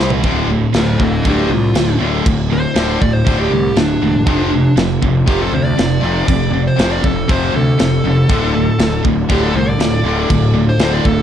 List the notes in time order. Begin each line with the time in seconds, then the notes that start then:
Already playing: C2 C3 G3 C4 G4 C5
0.00 snare
0.10 floor tom
0.23 D1 D2 A2 D3, kick, crash
0.51 D2 A2
0.74 D1 D2 A2 A4 C5, snare, crash
0.99 D1 D2 A2 A4, kick
1.03 C4
1.25 D1 D2 A2 D3 D4, kick, crash
1.29 G4
1.50 C2 D2 A2 F4
1.75 D1 D2 A2, snare, crash
2.00 D1 D2 A2 D3
2.26 D1 D2 A2, kick, crash
2.52 D2 A2 C5
2.76 D1 D2 A2 D3, snare, crash
3.01 D1 D2 A2 D5, kick
3.13 C5
3.26 D1 D2 A2 D3, kick, crash
3.40 G4
3.51 C2 D2 A2
3.76 D1 D2 A2 D4, snare, crash
4.02 E1 D2 A2
4.26 F1 F2 C3 F3, kick, crash
4.52 F2 C3
4.77 F1 F2 C3, snare, crash
5.02 F1 F2 C3, kick
5.26 F1 F2 C3 F3 G4, kick, crash
5.42 A4
5.52 D2 F2 C3 C5
5.65 D5
5.76 F1 F2 C3, snare, crash
6.00 F1 F2 C3 F3
6.26 F1 F2 C3, kick, crash
6.50 F2 C3
6.67 C5
6.76 F1 F2 C3 F3, snare, crash
6.92 D5
7.02 F1 F2 C3 A4, kick
7.28 F1 F2 C3 F3 C5, kick, crash
7.53 D2 F2 C3 A4
7.78 F1 F2 C3, snare, crash
8.04 F1 F2 C3
8.29 D1 D2 A2 D3 A3 F4 A4, kick, crash
8.54 D2 A2
8.79 D1 D2 A2, snare, crash
9.04 D1 D2 A2, kick
9.29 D1 D2 A2 D3 G4, kick, crash
9.43 A4
9.54 C2 D2 A2 C5
9.69 D5
9.79 D1 D2 A2, snare, crash
10.04 D1 D2 A2 D3
10.29 D1 D2 A2, kick, crash
10.55 D2 A2
10.69 C5
10.78 D1 D2 A2 D3, snare, crash
10.94 D5
11.04 D1 D2 A2 A4, kick